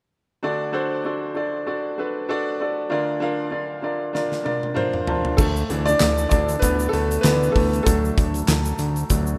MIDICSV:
0, 0, Header, 1, 4, 480
1, 0, Start_track
1, 0, Tempo, 619195
1, 333, Time_signature, 4, 2, 24, 8
1, 7274, End_track
2, 0, Start_track
2, 0, Title_t, "Upright piano"
2, 0, Program_c, 0, 0
2, 330, Note_on_c, 0, 62, 75
2, 334, Note_on_c, 0, 66, 71
2, 336, Note_on_c, 0, 69, 69
2, 337, Note_on_c, 0, 38, 52
2, 339, Note_on_c, 0, 50, 51
2, 341, Note_on_c, 0, 74, 90
2, 467, Control_c, 0, 64, 127
2, 518, Note_off_c, 0, 62, 0
2, 520, Note_off_c, 0, 66, 0
2, 521, Note_off_c, 0, 69, 0
2, 524, Note_off_c, 0, 74, 0
2, 561, Note_on_c, 0, 62, 80
2, 566, Note_on_c, 0, 66, 78
2, 571, Note_on_c, 0, 69, 75
2, 575, Note_on_c, 0, 72, 88
2, 754, Note_off_c, 0, 62, 0
2, 756, Note_off_c, 0, 66, 0
2, 759, Note_off_c, 0, 69, 0
2, 761, Note_off_c, 0, 72, 0
2, 809, Note_on_c, 0, 62, 58
2, 813, Note_on_c, 0, 66, 57
2, 817, Note_on_c, 0, 69, 54
2, 822, Note_on_c, 0, 74, 64
2, 998, Note_off_c, 0, 62, 0
2, 1000, Note_off_c, 0, 66, 0
2, 1002, Note_off_c, 0, 69, 0
2, 1004, Note_off_c, 0, 74, 0
2, 1043, Note_on_c, 0, 62, 61
2, 1049, Note_on_c, 0, 66, 52
2, 1054, Note_on_c, 0, 69, 54
2, 1060, Note_on_c, 0, 74, 67
2, 1235, Note_off_c, 0, 62, 0
2, 1238, Note_off_c, 0, 66, 0
2, 1240, Note_off_c, 0, 69, 0
2, 1243, Note_off_c, 0, 74, 0
2, 1289, Note_on_c, 0, 62, 59
2, 1291, Note_on_c, 0, 66, 60
2, 1292, Note_on_c, 0, 69, 56
2, 1299, Note_on_c, 0, 74, 69
2, 1478, Note_off_c, 0, 62, 0
2, 1479, Note_off_c, 0, 66, 0
2, 1479, Note_off_c, 0, 69, 0
2, 1483, Note_off_c, 0, 74, 0
2, 1533, Note_on_c, 0, 62, 65
2, 1537, Note_on_c, 0, 66, 57
2, 1542, Note_on_c, 0, 69, 60
2, 1546, Note_on_c, 0, 71, 76
2, 1720, Note_off_c, 0, 62, 0
2, 1722, Note_off_c, 0, 66, 0
2, 1724, Note_off_c, 0, 69, 0
2, 1726, Note_off_c, 0, 71, 0
2, 1772, Note_on_c, 0, 62, 84
2, 1777, Note_on_c, 0, 66, 77
2, 1778, Note_on_c, 0, 69, 83
2, 1787, Note_on_c, 0, 74, 98
2, 1960, Note_off_c, 0, 62, 0
2, 1962, Note_off_c, 0, 66, 0
2, 1962, Note_off_c, 0, 69, 0
2, 1967, Note_off_c, 0, 74, 0
2, 2017, Note_on_c, 0, 62, 59
2, 2021, Note_on_c, 0, 66, 56
2, 2027, Note_on_c, 0, 69, 58
2, 2028, Note_on_c, 0, 74, 65
2, 2202, Note_off_c, 0, 62, 0
2, 2204, Note_off_c, 0, 66, 0
2, 2207, Note_off_c, 0, 69, 0
2, 2208, Note_off_c, 0, 74, 0
2, 2225, Note_off_c, 0, 38, 0
2, 2226, Note_off_c, 0, 50, 0
2, 2245, Note_on_c, 0, 62, 84
2, 2248, Note_on_c, 0, 65, 78
2, 2252, Note_on_c, 0, 50, 53
2, 2253, Note_on_c, 0, 70, 76
2, 2254, Note_on_c, 0, 38, 58
2, 2262, Control_c, 0, 64, 0
2, 2262, Note_on_c, 0, 74, 87
2, 2397, Control_c, 0, 64, 127
2, 2436, Note_off_c, 0, 62, 0
2, 2437, Note_off_c, 0, 65, 0
2, 2440, Note_off_c, 0, 70, 0
2, 2444, Note_off_c, 0, 74, 0
2, 2481, Note_on_c, 0, 62, 85
2, 2489, Note_on_c, 0, 65, 74
2, 2495, Note_on_c, 0, 70, 79
2, 2498, Note_on_c, 0, 77, 90
2, 2674, Note_off_c, 0, 62, 0
2, 2678, Note_off_c, 0, 65, 0
2, 2681, Note_off_c, 0, 70, 0
2, 2682, Note_off_c, 0, 77, 0
2, 2719, Note_on_c, 0, 62, 62
2, 2720, Note_on_c, 0, 65, 53
2, 2728, Note_on_c, 0, 70, 55
2, 2730, Note_on_c, 0, 74, 66
2, 2913, Note_off_c, 0, 62, 0
2, 2913, Note_off_c, 0, 65, 0
2, 2917, Note_off_c, 0, 70, 0
2, 2918, Note_off_c, 0, 74, 0
2, 2962, Note_on_c, 0, 62, 64
2, 2966, Note_on_c, 0, 65, 56
2, 2972, Note_on_c, 0, 70, 60
2, 2976, Note_on_c, 0, 74, 72
2, 3154, Note_off_c, 0, 62, 0
2, 3156, Note_off_c, 0, 65, 0
2, 3159, Note_off_c, 0, 70, 0
2, 3161, Note_off_c, 0, 74, 0
2, 3203, Note_on_c, 0, 62, 65
2, 3211, Note_on_c, 0, 65, 61
2, 3215, Note_on_c, 0, 70, 58
2, 3216, Note_on_c, 0, 74, 73
2, 3395, Note_off_c, 0, 62, 0
2, 3399, Note_off_c, 0, 65, 0
2, 3401, Note_off_c, 0, 70, 0
2, 3401, Note_off_c, 0, 74, 0
2, 3439, Note_on_c, 0, 62, 67
2, 3448, Note_on_c, 0, 65, 59
2, 3452, Note_on_c, 0, 70, 67
2, 3454, Note_on_c, 0, 74, 76
2, 3632, Note_off_c, 0, 62, 0
2, 3637, Note_off_c, 0, 65, 0
2, 3639, Note_off_c, 0, 70, 0
2, 3640, Note_off_c, 0, 74, 0
2, 3678, Note_on_c, 0, 62, 88
2, 3683, Note_on_c, 0, 65, 78
2, 3687, Note_on_c, 0, 70, 80
2, 3688, Note_on_c, 0, 74, 61
2, 3693, Note_on_c, 0, 72, 100
2, 3815, Note_off_c, 0, 74, 0
2, 3825, Note_on_c, 0, 77, 54
2, 3872, Note_off_c, 0, 62, 0
2, 3875, Note_off_c, 0, 65, 0
2, 3877, Note_off_c, 0, 70, 0
2, 3880, Note_off_c, 0, 72, 0
2, 3924, Note_off_c, 0, 77, 0
2, 3932, Note_on_c, 0, 62, 63
2, 3935, Note_on_c, 0, 65, 60
2, 3941, Note_on_c, 0, 81, 54
2, 3942, Note_on_c, 0, 70, 56
2, 3946, Note_on_c, 0, 72, 67
2, 4119, Note_off_c, 0, 62, 0
2, 4120, Note_off_c, 0, 65, 0
2, 4124, Note_off_c, 0, 70, 0
2, 4126, Note_off_c, 0, 72, 0
2, 4141, Note_off_c, 0, 50, 0
2, 4142, Note_off_c, 0, 38, 0
2, 4160, Note_off_c, 0, 81, 0
2, 4162, Note_on_c, 0, 69, 88
2, 4184, Control_c, 0, 64, 0
2, 4186, Note_on_c, 0, 57, 66
2, 4326, Control_c, 0, 64, 127
2, 4410, Note_off_c, 0, 57, 0
2, 4415, Note_on_c, 0, 52, 57
2, 4422, Note_on_c, 0, 57, 47
2, 4424, Note_on_c, 0, 62, 59
2, 4539, Note_on_c, 0, 74, 107
2, 4548, Note_off_c, 0, 62, 0
2, 4553, Note_off_c, 0, 69, 0
2, 4560, Note_on_c, 0, 62, 70
2, 4744, Note_off_c, 0, 52, 0
2, 4747, Note_off_c, 0, 57, 0
2, 4864, Note_off_c, 0, 74, 0
2, 4875, Note_off_c, 0, 62, 0
2, 4878, Note_on_c, 0, 74, 88
2, 4904, Note_on_c, 0, 62, 66
2, 5107, Note_off_c, 0, 74, 0
2, 5112, Note_on_c, 0, 71, 89
2, 5121, Note_off_c, 0, 62, 0
2, 5141, Note_on_c, 0, 59, 71
2, 5339, Note_on_c, 0, 69, 84
2, 5344, Note_off_c, 0, 71, 0
2, 5360, Note_off_c, 0, 59, 0
2, 5373, Note_on_c, 0, 57, 65
2, 5589, Note_on_c, 0, 71, 91
2, 5595, Note_off_c, 0, 57, 0
2, 5603, Note_off_c, 0, 69, 0
2, 5612, Note_on_c, 0, 52, 53
2, 5615, Note_on_c, 0, 57, 46
2, 5618, Note_on_c, 0, 62, 58
2, 5621, Note_on_c, 0, 59, 75
2, 5822, Note_off_c, 0, 71, 0
2, 5827, Note_off_c, 0, 52, 0
2, 5828, Note_on_c, 0, 69, 74
2, 5829, Note_off_c, 0, 57, 0
2, 5831, Note_off_c, 0, 62, 0
2, 5840, Note_off_c, 0, 59, 0
2, 5863, Note_on_c, 0, 57, 60
2, 5885, Note_off_c, 0, 69, 0
2, 5915, Note_off_c, 0, 57, 0
2, 6070, Note_on_c, 0, 69, 81
2, 6089, Note_on_c, 0, 54, 56
2, 6093, Note_on_c, 0, 57, 59
2, 6096, Note_on_c, 0, 62, 58
2, 6102, Control_c, 0, 64, 0
2, 6249, Control_c, 0, 64, 127
2, 6419, Note_off_c, 0, 54, 0
2, 6423, Note_off_c, 0, 62, 0
2, 7008, Note_off_c, 0, 69, 0
2, 7023, Note_off_c, 0, 57, 0
2, 7055, Note_on_c, 0, 54, 50
2, 7056, Note_on_c, 0, 57, 42
2, 7059, Note_on_c, 0, 62, 52
2, 7268, Note_off_c, 0, 54, 0
2, 7269, Note_off_c, 0, 57, 0
2, 7271, Note_off_c, 0, 62, 0
2, 7274, End_track
3, 0, Start_track
3, 0, Title_t, "Analog synth bass"
3, 0, Program_c, 1, 38
3, 4172, Note_on_c, 1, 38, 105
3, 4369, Note_off_c, 1, 38, 0
3, 4419, Note_on_c, 1, 38, 92
3, 4613, Note_off_c, 1, 38, 0
3, 4665, Note_on_c, 1, 38, 99
3, 4856, Note_off_c, 1, 38, 0
3, 4892, Note_on_c, 1, 38, 106
3, 5089, Note_off_c, 1, 38, 0
3, 5136, Note_on_c, 1, 38, 104
3, 5331, Note_off_c, 1, 38, 0
3, 5372, Note_on_c, 1, 38, 100
3, 5569, Note_off_c, 1, 38, 0
3, 5612, Note_on_c, 1, 38, 92
3, 5808, Note_off_c, 1, 38, 0
3, 5860, Note_on_c, 1, 38, 92
3, 6053, Note_off_c, 1, 38, 0
3, 6094, Note_on_c, 1, 38, 106
3, 6289, Note_off_c, 1, 38, 0
3, 6338, Note_on_c, 1, 38, 98
3, 6531, Note_off_c, 1, 38, 0
3, 6574, Note_on_c, 1, 38, 96
3, 6769, Note_off_c, 1, 38, 0
3, 6813, Note_on_c, 1, 38, 92
3, 7008, Note_off_c, 1, 38, 0
3, 7056, Note_on_c, 1, 38, 102
3, 7250, Note_off_c, 1, 38, 0
3, 7274, End_track
4, 0, Start_track
4, 0, Title_t, "Drums"
4, 3216, Note_on_c, 9, 38, 45
4, 3294, Note_off_c, 9, 38, 0
4, 3347, Note_on_c, 9, 38, 43
4, 3425, Note_off_c, 9, 38, 0
4, 3456, Note_on_c, 9, 48, 56
4, 3534, Note_off_c, 9, 48, 0
4, 3591, Note_on_c, 9, 48, 53
4, 3668, Note_off_c, 9, 48, 0
4, 3694, Note_on_c, 9, 47, 67
4, 3772, Note_off_c, 9, 47, 0
4, 3826, Note_on_c, 9, 45, 59
4, 3903, Note_off_c, 9, 45, 0
4, 3934, Note_on_c, 9, 43, 77
4, 4011, Note_off_c, 9, 43, 0
4, 4068, Note_on_c, 9, 43, 70
4, 4146, Note_off_c, 9, 43, 0
4, 4173, Note_on_c, 9, 82, 70
4, 4174, Note_on_c, 9, 36, 111
4, 4174, Note_on_c, 9, 49, 88
4, 4251, Note_off_c, 9, 36, 0
4, 4251, Note_off_c, 9, 49, 0
4, 4251, Note_off_c, 9, 82, 0
4, 4313, Note_on_c, 9, 82, 43
4, 4390, Note_off_c, 9, 82, 0
4, 4418, Note_on_c, 9, 42, 63
4, 4495, Note_off_c, 9, 42, 0
4, 4547, Note_on_c, 9, 42, 46
4, 4557, Note_on_c, 9, 82, 44
4, 4625, Note_off_c, 9, 42, 0
4, 4635, Note_off_c, 9, 82, 0
4, 4650, Note_on_c, 9, 39, 86
4, 4652, Note_on_c, 9, 42, 81
4, 4654, Note_on_c, 9, 38, 104
4, 4658, Note_on_c, 9, 82, 65
4, 4728, Note_off_c, 9, 39, 0
4, 4729, Note_off_c, 9, 42, 0
4, 4731, Note_off_c, 9, 38, 0
4, 4735, Note_off_c, 9, 82, 0
4, 4789, Note_on_c, 9, 82, 47
4, 4867, Note_off_c, 9, 82, 0
4, 4892, Note_on_c, 9, 42, 70
4, 4892, Note_on_c, 9, 82, 52
4, 4896, Note_on_c, 9, 36, 97
4, 4969, Note_off_c, 9, 42, 0
4, 4969, Note_off_c, 9, 82, 0
4, 4973, Note_off_c, 9, 36, 0
4, 5027, Note_on_c, 9, 42, 43
4, 5031, Note_on_c, 9, 82, 46
4, 5105, Note_off_c, 9, 42, 0
4, 5108, Note_off_c, 9, 82, 0
4, 5131, Note_on_c, 9, 42, 74
4, 5135, Note_on_c, 9, 36, 74
4, 5139, Note_on_c, 9, 82, 82
4, 5209, Note_off_c, 9, 42, 0
4, 5212, Note_off_c, 9, 36, 0
4, 5217, Note_off_c, 9, 82, 0
4, 5267, Note_on_c, 9, 82, 50
4, 5345, Note_off_c, 9, 82, 0
4, 5375, Note_on_c, 9, 42, 70
4, 5452, Note_off_c, 9, 42, 0
4, 5514, Note_on_c, 9, 42, 46
4, 5514, Note_on_c, 9, 82, 57
4, 5591, Note_off_c, 9, 82, 0
4, 5592, Note_off_c, 9, 42, 0
4, 5611, Note_on_c, 9, 39, 71
4, 5614, Note_on_c, 9, 38, 98
4, 5615, Note_on_c, 9, 42, 81
4, 5620, Note_on_c, 9, 82, 69
4, 5688, Note_off_c, 9, 39, 0
4, 5691, Note_off_c, 9, 38, 0
4, 5693, Note_off_c, 9, 42, 0
4, 5697, Note_off_c, 9, 82, 0
4, 5760, Note_on_c, 9, 82, 45
4, 5837, Note_off_c, 9, 82, 0
4, 5858, Note_on_c, 9, 36, 89
4, 5858, Note_on_c, 9, 46, 72
4, 5935, Note_off_c, 9, 36, 0
4, 5936, Note_off_c, 9, 46, 0
4, 5995, Note_on_c, 9, 42, 47
4, 5999, Note_on_c, 9, 82, 49
4, 6073, Note_off_c, 9, 42, 0
4, 6077, Note_off_c, 9, 82, 0
4, 6096, Note_on_c, 9, 42, 86
4, 6097, Note_on_c, 9, 36, 114
4, 6100, Note_on_c, 9, 82, 72
4, 6174, Note_off_c, 9, 42, 0
4, 6175, Note_off_c, 9, 36, 0
4, 6178, Note_off_c, 9, 82, 0
4, 6239, Note_on_c, 9, 82, 41
4, 6316, Note_off_c, 9, 82, 0
4, 6338, Note_on_c, 9, 36, 100
4, 6342, Note_on_c, 9, 42, 66
4, 6415, Note_off_c, 9, 36, 0
4, 6420, Note_off_c, 9, 42, 0
4, 6466, Note_on_c, 9, 42, 46
4, 6476, Note_on_c, 9, 82, 45
4, 6544, Note_off_c, 9, 42, 0
4, 6553, Note_off_c, 9, 82, 0
4, 6572, Note_on_c, 9, 39, 90
4, 6574, Note_on_c, 9, 42, 85
4, 6576, Note_on_c, 9, 38, 107
4, 6578, Note_on_c, 9, 82, 64
4, 6650, Note_off_c, 9, 39, 0
4, 6652, Note_off_c, 9, 42, 0
4, 6653, Note_off_c, 9, 38, 0
4, 6656, Note_off_c, 9, 82, 0
4, 6705, Note_on_c, 9, 82, 46
4, 6710, Note_on_c, 9, 42, 34
4, 6783, Note_off_c, 9, 82, 0
4, 6787, Note_off_c, 9, 42, 0
4, 6809, Note_on_c, 9, 82, 51
4, 6813, Note_on_c, 9, 42, 73
4, 6886, Note_off_c, 9, 82, 0
4, 6890, Note_off_c, 9, 42, 0
4, 6946, Note_on_c, 9, 42, 40
4, 6950, Note_on_c, 9, 82, 45
4, 7023, Note_off_c, 9, 42, 0
4, 7028, Note_off_c, 9, 82, 0
4, 7052, Note_on_c, 9, 42, 76
4, 7054, Note_on_c, 9, 82, 81
4, 7056, Note_on_c, 9, 36, 83
4, 7130, Note_off_c, 9, 42, 0
4, 7132, Note_off_c, 9, 82, 0
4, 7134, Note_off_c, 9, 36, 0
4, 7185, Note_on_c, 9, 82, 50
4, 7262, Note_off_c, 9, 82, 0
4, 7274, End_track
0, 0, End_of_file